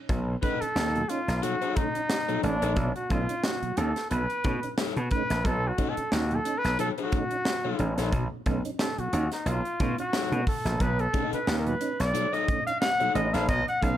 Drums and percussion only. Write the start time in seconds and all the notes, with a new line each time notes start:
0.09 kick, closed hi-hat
0.43 kick, closed hi-hat
0.62 closed hi-hat
0.76 snare
0.95 closed hi-hat
1.09 closed hi-hat
1.28 snare, closed hi-hat
1.43 closed hi-hat
1.62 closed hi-hat
1.76 kick, closed hi-hat
1.95 closed hi-hat
2.10 snare
2.29 closed hi-hat
2.43 closed hi-hat
2.62 closed hi-hat
2.76 kick, closed hi-hat
2.96 closed hi-hat
3.10 kick, closed hi-hat
3.29 closed hi-hat
3.44 snare
3.63 closed hi-hat
3.77 closed hi-hat
3.96 snare, closed hi-hat
4.11 closed hi-hat
4.30 closed hi-hat
4.44 kick, closed hi-hat
4.63 closed hi-hat
4.78 snare
4.97 closed hi-hat
5.11 kick, closed hi-hat
5.30 snare, closed hi-hat
5.45 kick, closed hi-hat
5.78 kick, closed hi-hat
5.97 closed hi-hat
6.12 snare
6.31 closed hi-hat
6.45 closed hi-hat
6.65 snare, closed hi-hat
6.79 closed hi-hat
6.98 closed hi-hat
7.12 kick, closed hi-hat
7.31 closed hi-hat
7.45 snare
7.79 closed hi-hat
7.98 snare, closed hi-hat
8.12 kick, closed hi-hat
8.46 kick, closed hi-hat
8.65 closed hi-hat
8.79 snare
8.98 closed hi-hat
9.13 closed hi-hat
9.32 snare, closed hi-hat
9.46 closed hi-hat
9.65 closed hi-hat
9.80 kick, closed hi-hat
9.98 closed hi-hat
10.13 snare
10.32 closed hi-hat
10.47 kick, open hi-hat
10.66 snare, closed hi-hat
10.80 kick, closed hi-hat
10.99 closed hi-hat
11.14 kick, closed hi-hat
11.33 closed hi-hat
11.47 snare
11.67 closed hi-hat
11.81 closed hi-hat
12.00 snare, closed hi-hat
12.15 closed hi-hat
12.34 closed hi-hat
12.48 kick, closed hi-hat
12.67 closed hi-hat
12.82 snare
13.00 closed hi-hat
13.15 closed hi-hat
13.34 snare, closed hi-hat
13.49 kick, closed hi-hat
13.68 closed hi-hat
13.82 kick, closed hi-hat